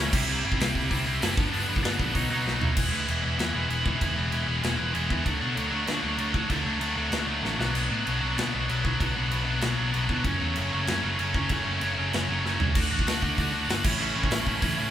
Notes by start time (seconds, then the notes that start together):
Already playing: A2 E3 A3 C#4 E4
0.12 C2 C3 G3 C4 E4, kick, crash
0.28 C2 C3 G3 C4 E4
0.44 G1 C3 G3 C4 E4
0.52 kick
0.59 C2 C3 G3 C4 E4, snare, open hi-hat
0.75 C2 C3 G3 C4 E4, kick
0.90 C2 C3 G3 C4 E4, kick, open hi-hat
1.05 C2 C3 G3 C4 E4
1.20 F#1 C3 G3 C4 E4, snare, open hi-hat
1.36 G1 G2 D3 G3 B3 D4, kick
1.51 G1 G2 D3 G3 B3 D4, open hi-hat
1.68 G1 G2 D3 G3 B3 D4
1.76 kick
1.83 G1 G2 D3 G3 B3 D4, snare, open hi-hat
1.97 A#1 G2 D3 G3 B3 D4, kick
2.14 B1 B2 F#3 B3 D#4, kick, open hi-hat
2.29 B2 F#3 B3 D#4
2.45 B1 B2 F#3 B3 D#4, snare
2.59 B2 F#3 B3 D#4, floor tom
2.76 E1 E3 G#3 B3 E4, kick, crash
2.91 D2 E3 G#3 B3 E4
3.07 E1 E3 G#3 B3 E4, crash
3.22 E1 E3 G#3 B3 E4
3.37 E2 E3 G#3 B3 E4, snare, crash
3.53 E1 E3 G#3 B3 E4
3.68 E1 E3 G#3 B3 E4, crash
3.84 E3 G#3 B3 E4, kick
4.00 E1 E3 G#3 B3 E4, kick, crash
4.16 E1 E3 G#3 B3 E4
4.31 E1 E3 G#3 B3 E4, crash
4.47 E1 E3 G#3 B3 E4
4.62 E1 E3 G#3 B3 E4, snare, crash
4.78 E1 E3 G#3 B3 E4
4.93 E1 E3 G#3 B3 E4, crash
5.10 E2 E3 G#3 B3 E4, kick
5.25 D2 D3 F#3 A3 D4, kick, crash
5.41 B2 D3 F#3 A3 D4
5.56 D2 D3 F#3 A3 D4, crash
5.71 D2 D3 F#3 A3 D4
5.86 D3 F#3 A3 D4, snare, crash
6.02 D2 D3 F#3 A3 D4
6.17 D2 D3 F#3 A3 D4, crash
6.33 D3 F#3 A3 D4, kick
6.49 D2 D3 F#3 A3 D4, kick, crash
6.65 D2 D3 F#3 A3 D4
6.80 D2 D3 F#3 A3 D4, crash
6.96 D2 D3 F#3 A3 D4
7.11 D2 D3 F#3 A3 D4, snare, crash
7.27 D2 D3 F#3 A3 D4
7.42 A1 D3 F#3 A3 D4, snare
7.58 B1 B2 F#3 B3 D4, snare
7.74 B1 B2 F#3 B3 D4, splash, crash
7.89 A2 B2 F#3 B3 D4
8.05 B1 B2 F#3 B3 D4, crash
8.20 B1 B2 F#3 B3 D4
8.36 B2 F#3 B3 D4, snare, crash
8.52 B1 B2 F#3 B3 D4
8.68 B1 B2 F#3 B3 D4, crash
8.84 B2 F#3 B3 D4, kick
8.99 B1 B2 F#3 B3 D4, kick, crash
9.15 B1 B2 F#3 B3 D4
9.30 B1 B2 F#3 B3 D4, crash
9.45 B1 B2 F#3 B3 D4
9.60 B1 B2 F#3 B3 D4, snare, crash
9.76 B1 B2 F#3 B3 D4
9.92 B1 B2 F#3 B3 D4, crash
10.08 B2 F#3 B3 D4, kick
10.23 F#1 F#2 C#3 F#3 A3 C#4, kick, crash
10.39 E2 F#2 C#3 F#3 A3 C#4
10.56 F#1 F#2 C#3 F#3 A3 C#4, crash
10.72 F#1 F#2 C#3 F#3 A3 C#4
10.87 F#2 C#3 F#3 A3 C#4, snare, crash
11.02 F#1 F#2 C#3 F#3 A3 C#4
11.17 F#1 F#2 C#3 F#3 A3 C#4, crash
11.34 F#2 C#3 F#3 A3 C#4, kick
11.49 F#1 F#2 C#3 F#3 A3 C#4, kick, crash
11.65 F#1 F#2 C#3 F#3 A3 C#4
11.81 F#1 F#2 C#3 F#3 A3 C#4, crash
11.97 F#1 F#2 C#3 F#3 A3 C#4
12.13 F#1 F#2 C#3 F#3 A3 C#4, snare, crash
12.29 F#1 F#2 C#3 F#3 A3 C#4
12.43 F#1 F#2 C#3 F#3 A3 C#4, snare
12.59 C#2 F#2 C#3 F#3 A3 C#4, floor tom
12.75 D2 D3 A3 D4 F#4, kick, crash
12.91 A1 D3 A3 D4 F#4
12.99 kick
13.06 D2 D3 A3 D4 F#4, snare, open hi-hat
13.22 D2 D3 A3 D4 F#4, kick
13.37 D2 D3 A3 D4 F#4, kick, open hi-hat
13.52 D2 D3 A3 D4 F#4
13.68 G1 D3 A3 D4 F#4, snare, open hi-hat
13.83 A1 A2 E3 A3 C#4 E4, kick, crash
13.99 A1 A2 E3 A3 C#4 E4
14.15 A1 A2 E3 A3 C#4 E4
14.23 kick
14.30 A1 A2 E3 A3 C#4 E4, snare, open hi-hat
14.46 A1 A2 E3 A3 C#4 E4, kick
14.61 A1 A2 E3 A3 C#4 E4, kick, open hi-hat
14.77 A2 E3 A3 C#4 E4